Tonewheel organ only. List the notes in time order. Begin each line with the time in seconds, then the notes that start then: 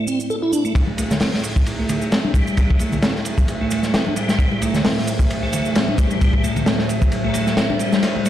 0.08 C4
0.30 A4
0.42 E4
0.53 D4
0.65 A3
0.98 A3
1.11 A3
1.21 C4
1.79 A3
2.12 C4
2.24 D4
2.35 G3
2.80 A3
2.93 A3
3.03 C4
3.61 A3
3.94 C4
4.06 D4
4.17 G3
4.62 A3
4.74 A3
4.85 C4
5.43 A3
5.76 C4
5.88 D4
5.98 G3
6.44 A3
6.56 A3
6.67 C4
7.24 A3
7.58 C4
7.70 D4
7.80 G3
8.25 A3